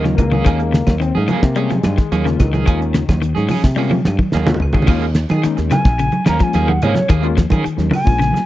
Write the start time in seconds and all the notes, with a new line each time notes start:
Already playing: D#2 D#3 A#4
0.03 C#3 G#3 A#3 C#4 F4, muted clean electric guitar stroke, snare, high conga
0.15 C#2 A#3, muted clean electric guitar stroke, kick, closed hi-hat, low conga, claves
0.32 D#3 C#4 G#4, high conga, low conga
0.45 D#2 D#3 G#3 A#3 C#4 G#4, kick, closed hi-hat, claves
0.60 muted clean electric guitar stroke, closed hi-hat
0.72 C#3, muted clean electric guitar stroke, snare, closed hi-hat
0.87 D#2, kick, snare, closed hi-hat, high conga, claves
0.99 D#3 C4, muted clean electric guitar stroke, closed hi-hat
1.15 G#2 A3 C#4 G#4, high conga
1.23 A#3
1.28 F3 A#3 C#4 G#4, closed hi-hat, high conga, low conga, claves
1.43 C3, kick, snare
1.56 G3 G#3 A#3 C#4 G#4, muted clean electric guitar stroke, closed hi-hat
1.70 F3, muted clean electric guitar stroke, snare, closed hi-hat, high conga
1.79 G#3
1.83 G2, muted clean electric guitar stroke, snare, closed hi-hat, high conga, claves
1.98 D#3, kick, snare, closed hi-hat
2.12 D#2 A#3 C#4 G#4, closed hi-hat, high conga
2.25 C#3 G#3 A#3 C#4 F4, muted clean electric guitar stroke, snare, closed hi-hat
2.39 C#2 D#3, muted clean electric guitar stroke, kick, snare, closed hi-hat, low conga, claves
2.53 D#3 C#4 G#4, closed hi-hat, high conga, low conga
2.66 D#2 D#3 G#3 A#3 C#4 F4 G#4, muted clean electric guitar stroke, kick, closed hi-hat, claves
2.81 muted clean electric guitar stroke, closed hi-hat
2.94 C#3, muted clean electric guitar stroke, snare, closed hi-hat
3.09 D#2, kick, snare, high conga, claves
3.22 D#3, muted clean electric guitar stroke, closed hi-hat
3.35 G#2 C#4 G#4, snare, high conga
3.49 F3 C#4 G#4, muted clean electric guitar stroke, open hi-hat, high conga, low conga, claves
3.64 C3, muted clean electric guitar stroke, kick, snare
3.76 G3 G#3 A#3 C#4 F4 G#4, high tom
3.90 F3, muted clean electric guitar stroke, high tom, high conga
4.05 G2, muted clean electric guitar stroke, snare, high conga, claves
4.19 D#3, muted fingered electric bass stroke, kick, high conga
4.32 D#2 A#3 C#4 G#4, snare
4.37 high conga
4.46 C#3 G#3 A#3 C#4 F4, muted clean electric guitar stroke, snare, low conga
4.54 low conga
4.60 C#2, muted clean electric guitar stroke, floor tom, claves
4.73 D#3 C#4 G#4, kick, low conga
4.82 low conga
4.87 D#2 D#3 G#3 A#3 C#4 F4 G#4, kick, crash, claves
5.02 closed hi-hat
5.15 muted clean electric guitar stroke, snare, closed hi-hat
5.29 D#3 G#4, snare, closed hi-hat, high conga, claves
5.43 D#3 G#3 A#3 C#4 D#4, muted clean electric guitar stroke, muted fingered electric bass stroke, snare, closed hi-hat
5.57 D#2, muted clean electric guitar stroke, snare, closed hi-hat
5.70 C#3 G#5, muted clean electric guitar stroke, snare, closed hi-hat, high conga, low conga, claves
5.85 A#1, muted clean electric guitar stroke, kick, snare, closed hi-hat
5.99 C#3, closed hi-hat
6.12 muted clean electric guitar stroke, closed hi-hat, high conga
6.25 D#2 D#3 A#3 C#4 A#5, muted clean electric guitar stroke, snare, closed hi-hat, high conga, claves
6.39 F3 G#3 A#3 C#4 F4 G#5, muted clean electric guitar stroke, kick, snare, closed hi-hat
6.53 D#2 A#3 C#4 G#4, snare, closed hi-hat, high conga
6.68 D#3 F#5, high conga
6.82 G#2 A#3 C#4 G#4 C#5, closed hi-hat, low conga, claves
6.95 F3, muted clean electric guitar stroke, snare, closed hi-hat, high conga, low conga
7.09 D#2 D#3 A#3 G#4, muted clean electric guitar stroke, kick, closed hi-hat, claves
7.23 G#3 A#3 C#4 F4, closed hi-hat
7.37 F3, muted clean electric guitar stroke, kick, snare, closed hi-hat
7.50 D#3 C#4 G#4, kick, closed hi-hat, high conga, claves
7.64 D#3, muted clean electric guitar stroke, muted fingered electric bass stroke, closed hi-hat
7.77 D#2 G#3 A#3 C#4 D#4, muted clean electric guitar stroke, snare, closed hi-hat, high conga
7.91 C#3, muted clean electric guitar stroke, open hi-hat, high conga, low conga, claves
7.95 G#5
8.04 A#1 G#3 A#3 C#4 F4, muted clean electric guitar stroke, kick
8.19 C#3, snare, closed hi-hat
8.33 muted clean electric guitar stroke, snare, closed hi-hat, high conga